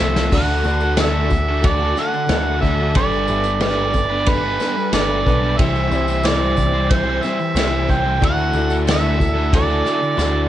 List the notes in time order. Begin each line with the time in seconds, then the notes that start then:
Already playing: F3 F4 A4 E5 C6
0.00 C2 A3 C4 F4 A4
0.16 C4 F4 A4, snare, tambourine
0.31 D2 D3 A3 D4 F#4 A4 D5 F#5 D6, kick, tambourine, crash
0.36 A4
0.48 tambourine
0.64 D2 D4 F#4 A4 B4, tambourine
0.80 F#4 A4, tambourine
0.85 D4
0.97 D3 A3 D4 F#4 A4, snare, ride bell, tambourine
1.01 E5
1.30 D4 F#4 A4, muted overdriven electric guitar stroke, kick, tambourine
1.49 D4 F#4 A4
1.61 A3 D4 F#4 A4, kick, ride bell
1.66 D5
1.82 D4 F#4 A4
1.95 D3 D4 A4 F#5, snare, tambourine
2.00 F#4 A4
2.13 muted overdriven electric guitar stroke, tambourine
2.26 D2 D3 A3 A4, snare, ride bell, tambourine
2.31 D4 F#4 A4
2.61 D2 D3 D4 F#4 A4 E5, kick, tambourine
2.65 A4
2.80 D4 F#4 A4
2.95 G1 G3 B3 D4 G4 A4 B4 D5 G5 B5, kick, ride bell, tambourine
3.11 tambourine
3.27 G1 D4 G4 A4 B4 E5, tambourine
3.43 B3 B4, tambourine
3.48 D4
3.60 G3 B3 D4 A4 B4 D5, snare, ride bell, tambourine
3.93 D4 A4 B4, muted overdriven electric guitar stroke, kick, tambourine
4.10 B3 D4 B4
4.25 G3 D4 A4 B4, kick, ride bell
4.44 B3 D4 B4
4.60 G3 B3 D4 A4 B4, snare, tambourine
4.77 muted overdriven electric guitar stroke, tambourine
4.92 G1 G3 B3 D4 A4 B4 D5, snare, ride bell, tambourine
5.25 B1 G3 B3 D4 A4 B4, kick, tambourine
5.41 B3 D4 B4
5.57 C2 C3 E3 G3 C4 E4 G4 C5 E5 E6, kick, ride bell, tambourine
5.75 tambourine
5.91 C2 G3 C4 E4 G4 C5 E5, tambourine
6.07 G3 C4 E4 C5, tambourine
6.23 C3 E3 G3 C4 E4 C5 D5, snare, ride bell, tambourine
6.57 G3 C4 E4 C5, muted overdriven electric guitar stroke, kick, tambourine
6.73 G3 C4 E4 C5
6.89 G3 C4 E4 C5, kick, ride bell
7.05 G3 C4 E4 C5
7.22 G3 C4 E4 C5 E5, snare, tambourine
7.39 muted overdriven electric guitar stroke, tambourine
7.55 C2 C3 E3 G3 C4 E4 C5, snare, ride bell, tambourine
7.87 C2 G3 C4 E4 C5, kick, tambourine
7.91 G5
8.04 G3 C4 E4 C5
8.20 D2 D3 A3 D4 E4 F#4 A4 D5 E5 F#5, kick, ride bell, tambourine
8.25 F#5
8.38 tambourine
8.53 D2 F#4 A4 D5 E5, tambourine
8.57 E4
8.70 D4 F#4 A4, tambourine
8.86 D3 A3 D4 E4 F#4 A4, snare, ride bell, tambourine
8.92 E5
9.19 F#4 A4, muted overdriven electric guitar stroke, kick, tambourine
9.23 E4
9.35 D4 F#4 A4
9.53 A3 E4 F#4 A4 D5, kick, ride bell, tambourine
9.68 D4 F#4 A4, tambourine
9.85 D3 D4 E4 F#4 A4, snare, tambourine
10.02 muted overdriven electric guitar stroke, tambourine
10.17 D2 D3 A3 D4 E4 F#4 A4, snare, tambourine